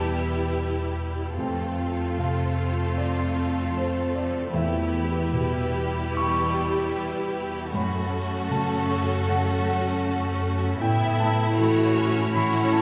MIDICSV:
0, 0, Header, 1, 6, 480
1, 0, Start_track
1, 0, Tempo, 790514
1, 840, Time_signature, 4, 2, 24, 8
1, 3233, Tempo, 816327
1, 4193, Tempo, 769231
1, 7850, End_track
2, 0, Start_track
2, 0, Title_t, "Grand piano"
2, 0, Program_c, 0, 0
2, 0, Control_c, 0, 64, 127
2, 0, Note_on_c, 0, 40, 33
2, 0, Note_on_c, 0, 47, 25
2, 0, Note_on_c, 0, 76, 38
2, 0, Note_on_c, 0, 81, 47
2, 814, Note_off_c, 0, 40, 0
2, 816, Note_off_c, 0, 81, 0
2, 837, Note_on_c, 0, 41, 33
2, 838, Note_off_c, 0, 47, 0
2, 848, Note_on_c, 0, 79, 35
2, 851, Control_c, 0, 64, 0
2, 853, Note_off_c, 0, 76, 0
2, 941, Control_c, 0, 64, 127
2, 1303, Note_off_c, 0, 79, 0
2, 1321, Note_on_c, 0, 48, 24
2, 1325, Note_on_c, 0, 77, 44
2, 1784, Note_off_c, 0, 77, 0
2, 1807, Note_on_c, 0, 74, 49
2, 2259, Note_off_c, 0, 74, 0
2, 2289, Note_on_c, 0, 72, 36
2, 2507, Note_off_c, 0, 72, 0
2, 2521, Note_on_c, 0, 74, 45
2, 2730, Note_off_c, 0, 41, 0
2, 2740, Note_off_c, 0, 74, 0
2, 2754, Note_off_c, 0, 48, 0
2, 2756, Note_on_c, 0, 40, 40
2, 2758, Note_on_c, 0, 76, 42
2, 2767, Control_c, 0, 64, 0
2, 2852, Control_c, 0, 64, 127
2, 3232, Note_on_c, 0, 47, 28
2, 3705, Note_off_c, 0, 76, 0
2, 3730, Note_on_c, 0, 85, 57
2, 4655, Note_off_c, 0, 40, 0
2, 4657, Note_off_c, 0, 85, 0
2, 4679, Note_off_c, 0, 47, 0
2, 4680, Note_on_c, 0, 42, 40
2, 4687, Note_on_c, 0, 83, 48
2, 4690, Control_c, 0, 64, 0
2, 4786, Control_c, 0, 64, 127
2, 5140, Note_off_c, 0, 83, 0
2, 5158, Note_on_c, 0, 49, 29
2, 5164, Note_on_c, 0, 81, 60
2, 5619, Note_off_c, 0, 81, 0
2, 5647, Note_on_c, 0, 78, 58
2, 5870, Note_off_c, 0, 78, 0
2, 5893, Note_on_c, 0, 78, 52
2, 6570, Note_off_c, 0, 42, 0
2, 6574, Note_off_c, 0, 78, 0
2, 6593, Note_off_c, 0, 49, 0
2, 6593, Note_on_c, 0, 45, 42
2, 6599, Note_on_c, 0, 79, 60
2, 6607, Control_c, 0, 64, 0
2, 6709, Control_c, 0, 64, 127
2, 6820, Note_off_c, 0, 79, 0
2, 6839, Note_on_c, 0, 81, 61
2, 7082, Note_on_c, 0, 52, 33
2, 7529, Note_off_c, 0, 81, 0
2, 7558, Note_on_c, 0, 83, 68
2, 7778, Note_off_c, 0, 83, 0
2, 7793, Note_on_c, 0, 81, 61
2, 7850, Note_off_c, 0, 45, 0
2, 7850, Note_off_c, 0, 52, 0
2, 7850, Note_off_c, 0, 81, 0
2, 7850, End_track
3, 0, Start_track
3, 0, Title_t, "Violin section"
3, 0, Program_c, 1, 48
3, 0, Note_on_c, 1, 67, 36
3, 0, Note_on_c, 1, 71, 32
3, 813, Note_off_c, 1, 71, 0
3, 814, Note_off_c, 1, 67, 0
3, 840, Note_on_c, 1, 65, 33
3, 840, Note_on_c, 1, 69, 37
3, 2731, Note_off_c, 1, 69, 0
3, 2755, Note_off_c, 1, 65, 0
3, 2755, Note_on_c, 1, 67, 41
3, 2758, Note_on_c, 1, 71, 38
3, 4655, Note_off_c, 1, 67, 0
3, 4656, Note_off_c, 1, 71, 0
3, 4682, Note_on_c, 1, 66, 47
3, 4682, Note_on_c, 1, 69, 49
3, 6571, Note_off_c, 1, 66, 0
3, 6596, Note_off_c, 1, 69, 0
3, 6596, Note_on_c, 1, 64, 49
3, 6597, Note_on_c, 1, 76, 44
3, 7051, Note_off_c, 1, 76, 0
3, 7079, Note_on_c, 1, 73, 44
3, 7527, Note_off_c, 1, 64, 0
3, 7546, Note_off_c, 1, 73, 0
3, 7554, Note_on_c, 1, 73, 47
3, 7555, Note_on_c, 1, 66, 47
3, 7850, Note_off_c, 1, 66, 0
3, 7850, Note_off_c, 1, 73, 0
3, 7850, End_track
4, 0, Start_track
4, 0, Title_t, "Harp"
4, 0, Program_c, 2, 46
4, 0, Note_on_c, 2, 40, 32
4, 0, Note_on_c, 2, 47, 28
4, 0, Note_on_c, 2, 67, 26
4, 0, Note_on_c, 2, 71, 29
4, 0, Note_on_c, 2, 76, 28
4, 35, Note_on_c, 2, 59, 28
4, 187, Note_off_c, 2, 67, 0
4, 195, Note_on_c, 2, 67, 26
4, 350, Note_off_c, 2, 71, 0
4, 357, Note_on_c, 2, 71, 29
4, 507, Note_off_c, 2, 76, 0
4, 514, Note_on_c, 2, 76, 30
4, 670, Note_off_c, 2, 67, 0
4, 678, Note_on_c, 2, 67, 27
4, 842, Note_on_c, 2, 41, 31
4, 857, Note_off_c, 2, 76, 0
4, 859, Note_off_c, 2, 47, 0
4, 859, Note_off_c, 2, 67, 0
4, 859, Note_off_c, 2, 71, 0
4, 860, Note_off_c, 2, 40, 0
4, 860, Note_off_c, 2, 59, 0
4, 998, Note_on_c, 2, 57, 26
4, 1163, Note_on_c, 2, 65, 27
4, 1324, Note_on_c, 2, 69, 29
4, 1484, Note_on_c, 2, 72, 33
4, 1638, Note_off_c, 2, 65, 0
4, 1645, Note_on_c, 2, 65, 27
4, 1809, Note_on_c, 2, 48, 30
4, 1960, Note_off_c, 2, 57, 0
4, 1967, Note_on_c, 2, 57, 27
4, 2119, Note_off_c, 2, 65, 0
4, 2127, Note_on_c, 2, 65, 27
4, 2279, Note_off_c, 2, 69, 0
4, 2286, Note_on_c, 2, 69, 30
4, 2437, Note_off_c, 2, 72, 0
4, 2444, Note_on_c, 2, 72, 31
4, 2594, Note_off_c, 2, 65, 0
4, 2601, Note_on_c, 2, 65, 33
4, 2755, Note_on_c, 2, 40, 35
4, 2775, Note_off_c, 2, 41, 0
4, 2775, Note_off_c, 2, 48, 0
4, 2775, Note_off_c, 2, 57, 0
4, 2775, Note_off_c, 2, 65, 0
4, 2775, Note_off_c, 2, 69, 0
4, 2775, Note_off_c, 2, 72, 0
4, 2913, Note_on_c, 2, 59, 30
4, 3074, Note_on_c, 2, 67, 28
4, 3233, Note_on_c, 2, 71, 30
4, 3395, Note_on_c, 2, 76, 35
4, 3556, Note_off_c, 2, 67, 0
4, 3563, Note_on_c, 2, 67, 30
4, 3727, Note_on_c, 2, 47, 33
4, 3881, Note_off_c, 2, 59, 0
4, 3888, Note_on_c, 2, 59, 33
4, 4037, Note_off_c, 2, 67, 0
4, 4044, Note_on_c, 2, 67, 30
4, 4188, Note_off_c, 2, 71, 0
4, 4195, Note_on_c, 2, 71, 35
4, 4349, Note_off_c, 2, 76, 0
4, 4356, Note_on_c, 2, 76, 38
4, 4513, Note_off_c, 2, 67, 0
4, 4520, Note_on_c, 2, 67, 36
4, 4680, Note_on_c, 2, 42, 39
4, 4699, Note_off_c, 2, 40, 0
4, 4699, Note_off_c, 2, 47, 0
4, 4700, Note_off_c, 2, 59, 0
4, 4700, Note_off_c, 2, 71, 0
4, 4700, Note_off_c, 2, 76, 0
4, 4701, Note_off_c, 2, 67, 0
4, 4844, Note_on_c, 2, 57, 31
4, 5002, Note_on_c, 2, 66, 35
4, 5165, Note_on_c, 2, 69, 36
4, 5326, Note_on_c, 2, 73, 41
4, 5479, Note_off_c, 2, 66, 0
4, 5487, Note_on_c, 2, 66, 33
4, 5644, Note_on_c, 2, 49, 39
4, 5801, Note_off_c, 2, 57, 0
4, 5808, Note_on_c, 2, 57, 40
4, 5962, Note_off_c, 2, 66, 0
4, 5970, Note_on_c, 2, 66, 37
4, 6123, Note_off_c, 2, 69, 0
4, 6130, Note_on_c, 2, 69, 38
4, 6278, Note_off_c, 2, 73, 0
4, 6286, Note_on_c, 2, 73, 43
4, 6436, Note_off_c, 2, 66, 0
4, 6444, Note_on_c, 2, 66, 39
4, 6602, Note_on_c, 2, 45, 47
4, 6614, Note_off_c, 2, 42, 0
4, 6615, Note_off_c, 2, 49, 0
4, 6617, Note_off_c, 2, 66, 0
4, 6747, Note_off_c, 2, 57, 0
4, 6755, Note_on_c, 2, 57, 34
4, 6916, Note_on_c, 2, 64, 38
4, 7068, Note_off_c, 2, 69, 0
4, 7075, Note_on_c, 2, 69, 41
4, 7228, Note_off_c, 2, 73, 0
4, 7236, Note_on_c, 2, 73, 41
4, 7386, Note_off_c, 2, 64, 0
4, 7393, Note_on_c, 2, 64, 39
4, 7555, Note_on_c, 2, 52, 39
4, 7706, Note_off_c, 2, 57, 0
4, 7713, Note_on_c, 2, 57, 40
4, 7850, Note_off_c, 2, 45, 0
4, 7850, Note_off_c, 2, 52, 0
4, 7850, Note_off_c, 2, 57, 0
4, 7850, Note_off_c, 2, 64, 0
4, 7850, Note_off_c, 2, 69, 0
4, 7850, Note_off_c, 2, 73, 0
4, 7850, End_track
5, 0, Start_track
5, 0, Title_t, "Viola section"
5, 0, Program_c, 3, 48
5, 0, Note_on_c, 3, 55, 37
5, 0, Note_on_c, 3, 64, 36
5, 812, Note_off_c, 3, 55, 0
5, 812, Note_off_c, 3, 64, 0
5, 837, Note_on_c, 3, 57, 39
5, 838, Note_on_c, 3, 60, 36
5, 2730, Note_off_c, 3, 60, 0
5, 2752, Note_on_c, 3, 64, 39
5, 3209, Note_off_c, 3, 57, 0
5, 3233, Note_on_c, 3, 55, 45
5, 4653, Note_off_c, 3, 64, 0
5, 4680, Note_off_c, 3, 55, 0
5, 4680, Note_on_c, 3, 61, 45
5, 4681, Note_on_c, 3, 57, 45
5, 6570, Note_off_c, 3, 57, 0
5, 6570, Note_off_c, 3, 61, 0
5, 6597, Note_on_c, 3, 59, 49
5, 6600, Note_on_c, 3, 64, 47
5, 7051, Note_off_c, 3, 59, 0
5, 7053, Note_off_c, 3, 64, 0
5, 7074, Note_on_c, 3, 57, 50
5, 7074, Note_on_c, 3, 66, 50
5, 7306, Note_on_c, 3, 61, 51
5, 7313, Note_off_c, 3, 57, 0
5, 7539, Note_off_c, 3, 61, 0
5, 7546, Note_on_c, 3, 61, 50
5, 7546, Note_on_c, 3, 64, 46
5, 7551, Note_off_c, 3, 66, 0
5, 7850, Note_off_c, 3, 61, 0
5, 7850, Note_off_c, 3, 64, 0
5, 7850, End_track
6, 0, Start_track
6, 0, Title_t, "Cello section"
6, 0, Program_c, 4, 48
6, 0, Note_on_c, 4, 40, 32
6, 813, Note_off_c, 4, 40, 0
6, 840, Note_on_c, 4, 41, 35
6, 2731, Note_off_c, 4, 41, 0
6, 2757, Note_on_c, 4, 40, 39
6, 4678, Note_on_c, 4, 42, 42
6, 4681, Note_off_c, 4, 40, 0
6, 6591, Note_on_c, 4, 45, 49
6, 6594, Note_off_c, 4, 42, 0
6, 7850, Note_off_c, 4, 45, 0
6, 7850, End_track
0, 0, End_of_file